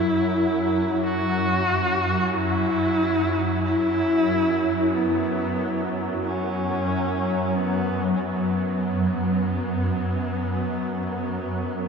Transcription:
Already playing: synth drone F#2 F#3, horsehead fiddle E4
1.03 horsehead fiddle F#4
2.34 horsehead fiddle E4
3.65 horsehead fiddle E4
4.94 horsehead fiddle B3
6.23 horsehead fiddle C#4 E4
7.55 horsehead fiddle B3
8.16 horsehead fiddle B3 C#4

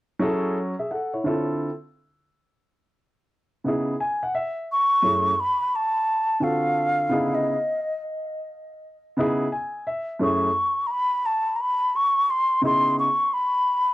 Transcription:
0.19 grand piano F#3 C#4 E4 G#4 A4
0.79 grand piano G#4 E5
0.91 grand piano A4 F#5
1.14 grand piano E4 C#5
1.24 grand piano D3 C4 E4 F4 A4
3.64 grand piano C#3 B3 D#4 E4 G#4
4.00 grand piano G#5
4.23 grand piano F#5
4.35 grand piano E5
4.72 flute C#6
5.02 grand piano F#2 A3 C#4 E4 G#4
5.40 flute B5
5.76 flute A5
6.40 grand piano D3 C4 F4 F#4 A4, flute F5
7.09 grand piano C#3 B3 D#4 E4 G#4
7.34 flute D#5
9.17 grand piano C#3 B3 D#4 E4 G#4
9.52 grand piano G#5
9.87 grand piano E5
10.19 grand piano F#2 A3 C#4 E4 G#4, flute C#6
10.87 flute A#5
10.91 flute B5
11.26 flute A5
11.56 flute A#5
11.61 flute B5
11.96 flute C#6
12.30 flute C6
12.62 grand piano C#3 B3 D#4 E4 G#4
12.66 flute C6
12.99 flute C#6
13.33 flute B5

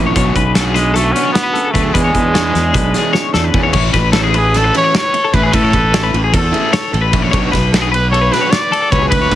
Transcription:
Already playing: fingered electric bass A#1, clean electric guitar A2 A3 C#4 E4, overdriven electric guitar E3 A3 C#4 E4
0.07 clean electric guitar C#5
0.15 fingered electric bass B1, clean electric guitar B2 C#4 C#5, overdriven electric guitar F#3 B3 D4 F#4, kick, closed hi-hat
0.35 fingered electric bass B1, clean electric guitar F#4 B4, muted overdriven electric guitar stroke, kick, closed hi-hat
0.55 overdriven electric guitar F#3 B3 D4 F#4, clean electric guitar C#4 A4, snare, closed hi-hat
0.65 clean electric guitar G#4
0.74 clean electric guitar D3 B4, trumpet G#3, muted overdriven electric guitar stroke, snare, closed hi-hat
0.94 trumpet A3, clean electric guitar F#4 A4, muted overdriven electric guitar stroke, snare, closed hi-hat
1.03 clean electric guitar B4
1.12 clean electric guitar B2, overdriven electric guitar B3 D4 F#4, trumpet C#4, closed hi-hat
1.16 overdriven electric guitar F#3
1.23 clean electric guitar C#5
1.32 clean electric guitar B2, trumpet B3, muted overdriven electric guitar stroke, snare, closed hi-hat
1.43 clean electric guitar B4
1.53 clean electric guitar C#3 A4, muted overdriven electric guitar stroke, closed hi-hat
1.64 clean electric guitar A4
1.71 overdriven electric guitar F#3 B3 D4 F#4, trumpet A3, clean electric guitar B4, kick
1.75 fingered electric bass D2, clean electric guitar D3, closed hi-hat
1.83 clean electric guitar G#4
1.93 fingered electric bass E2, clean electric guitar E2 G#3 C#4 B4, overdriven electric guitar E3 B3 D4 G#4, trumpet G#3, kick, closed hi-hat
1.98 clean electric guitar D4 G#4
2.04 clean electric guitar C#5
2.14 fingered electric bass E2, clean electric guitar D4 B4, muted overdriven electric guitar stroke, kick, closed hi-hat
2.34 overdriven electric guitar E3 B3 D4 G#4, clean electric guitar C#4 C#5, snare, closed hi-hat
2.43 clean electric guitar B4
2.54 fingered electric bass E2, clean electric guitar G#3, muted overdriven electric guitar stroke, snare, closed hi-hat
2.63 clean electric guitar G#4
2.74 fingered electric bass B1, clean electric guitar D4 B4, muted overdriven electric guitar stroke, kick, snare, closed hi-hat
2.94 clean electric guitar E2 G#4, overdriven electric guitar E3 B3 D4 G#4, snare, closed hi-hat
3.13 clean electric guitar C#4 C#5, muted overdriven electric guitar stroke, snare
3.34 fingered electric bass E2, clean electric guitar D4 A4, muted overdriven electric guitar stroke, snare
3.44 clean electric guitar B4
3.54 fingered electric bass E2, clean electric guitar E2 C#4, overdriven electric guitar E3 B3 D4 G#4, kick
3.63 clean electric guitar C#5
3.73 fingered electric bass A1, overdriven electric guitar E3 A3 C#4 E4, clean electric guitar C#5, kick, crash
3.93 fingered electric bass A1, clean electric guitar B4, muted overdriven electric guitar stroke, kick, snare, ride
4.12 overdriven electric guitar E3 A3 C#4 E4, clean electric guitar A4, snare, ride
4.24 clean electric guitar G#4
4.34 trumpet G#4, clean electric guitar B4, muted overdriven electric guitar stroke, ride
4.54 clean electric guitar A4, trumpet A4, muted overdriven electric guitar stroke, snare, ride
4.64 clean electric guitar B4
4.74 overdriven electric guitar E3 A3 C#4 E4, trumpet C#5, ride
4.84 clean electric guitar C#5
4.94 trumpet C#5, muted overdriven electric guitar stroke, snare, ride
5.04 clean electric guitar B4
5.13 clean electric guitar A4, muted overdriven electric guitar stroke, ride
5.25 clean electric guitar A4
5.33 fingered electric bass A1, overdriven electric guitar E3 A3 C#4 E4, clean electric guitar B4, trumpet B4, kick, ride
5.43 clean electric guitar G#4, trumpet B4
5.52 fingered electric bass A2, overdriven electric guitar E3 A3 C#4 E4, trumpet A4, clean electric guitar B4, kick, ride
5.63 clean electric guitar C#5
5.73 fingered electric bass A1, clean electric guitar B4, muted overdriven electric guitar stroke, kick, ride
5.93 overdriven electric guitar E3 A3 C#4 E4, clean electric guitar C#5, snare, ride
6.03 clean electric guitar B4
6.13 fingered electric bass A1, muted overdriven electric guitar stroke, ride
6.24 clean electric guitar G#4
6.33 fingered electric bass E2, clean electric guitar A4, trumpet A4, muted overdriven electric guitar stroke, kick, ride
6.52 overdriven electric guitar E3 A3 C#4 E4, clean electric guitar G#4, ride
6.73 clean electric guitar C#5, muted overdriven electric guitar stroke, snare, ride
6.92 fingered electric bass A1, clean electric guitar A4, muted overdriven electric guitar stroke, ride
7.01 clean electric guitar B4
7.13 fingered electric bass A#1, overdriven electric guitar E3 A3 C#4 E4, kick, ride
7.22 clean electric guitar C#5
7.31 fingered electric bass B1, overdriven electric guitar B2 F#3 B3 D4, clean electric guitar C#5, kick, ride
7.52 fingered electric bass B1, clean electric guitar B4, muted overdriven electric guitar stroke, kick, snare, ride
7.72 overdriven electric guitar B2 F#3 B3 D4, clean electric guitar A4, snare, ride
7.82 clean electric guitar G#4
7.92 clean electric guitar B4, trumpet B4, muted overdriven electric guitar stroke, ride
8.11 clean electric guitar A4, trumpet C#5, muted overdriven electric guitar stroke, ride
8.21 clean electric guitar B4
8.31 overdriven electric guitar B2 F#3 B3 D4, trumpet B4, snare, ride
8.41 clean electric guitar C#5
8.51 trumpet D5, muted overdriven electric guitar stroke, snare, ride
8.62 clean electric guitar B4
8.71 clean electric guitar A4, muted overdriven electric guitar stroke, ride
8.82 clean electric guitar A4
8.91 fingered electric bass C#2, overdriven electric guitar B2 F#3 B3 D4, clean electric guitar B4, trumpet C#5, kick, ride
9.02 clean electric guitar G#4
9.09 fingered electric bass D2, overdriven electric guitar D3 F#3 A3 D4, trumpet B4, clean electric guitar B4, kick, ride
9.21 clean electric guitar C#5
9.31 fingered electric bass D2, clean electric guitar B4, muted overdriven electric guitar stroke, kick, snare, ride

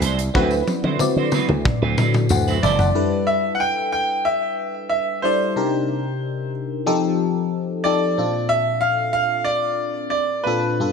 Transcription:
Already playing: fm electric piano C4 E4 F#4 D5
0.01 slap bass C2, clean electric guitar F#3 C4 E4 C5, closed hi-hat, tambourine
0.19 muted clean electric guitar stroke, closed hi-hat, tambourine
0.34 slap bass D2, clean electric guitar F#3 C4 E4 B4, fm electric piano C4 E4 F#4 B4, kick, high tom
0.51 muted clean electric guitar stroke, tambourine
0.68 muted clean electric guitar stroke, high tom, tambourine
0.84 slap bass D3, clean electric guitar F#3 C4 E4 C5, high tom
0.99 fm electric piano C4 E4 F#4 D5, muted slap bass stroke, mid tom, tambourine
1.16 slap bass D3, clean electric guitar F#3 C4 E4 C5
1.32 clean electric guitar F#3 C4 E4 B4, mid tom, tambourine
1.49 slap bass D2, muted clean electric guitar stroke, mid tom
1.65 muted clean electric guitar stroke, kick, mid tom
1.82 slap bass D2, clean electric guitar F#3 C4 E4 B4
1.98 slap bass D3, clean electric guitar F#3 C4 E4 B4, mid tom, tambourine
2.14 muted clean electric guitar stroke, mid tom, tambourine
2.29 slap bass D2, fm electric piano C5 F#5, muted clean electric guitar stroke, floor tom, tambourine
2.48 clean electric guitar F#3 C4 E4 B4, tambourine
2.63 slap bass F#1, clean electric guitar F#3 C4 E4 C5, grand piano D5, fm electric piano E5 A5, floor tom, tambourine
2.79 fm electric piano C5 F#5, muted clean electric guitar stroke, floor tom, tambourine
2.95 fm electric piano G3 D4 E4 A4 B4
3.27 grand piano E5
3.55 grand piano F#5
3.60 grand piano G5
3.92 grand piano G5
4.25 grand piano E5
4.89 grand piano E5
5.22 fm electric piano G3 D4 E4 A4 D5, grand piano C5
5.56 fm electric piano C3 D4 D#4 G4 A#4
6.86 fm electric piano F3 C4 D#4 G4 A4
7.84 fm electric piano F3 C4 D#4 G4 A4, grand piano D5
8.18 fm electric piano A#2 C4 D4 F4 A4
8.49 grand piano E5
8.81 grand piano F5
9.13 grand piano F5
9.44 grand piano D5
10.10 grand piano D5
10.44 fm electric piano A#2 C4 D4 F4 A4, grand piano B4
10.80 fm electric piano G2 B3 D4 F4 A4

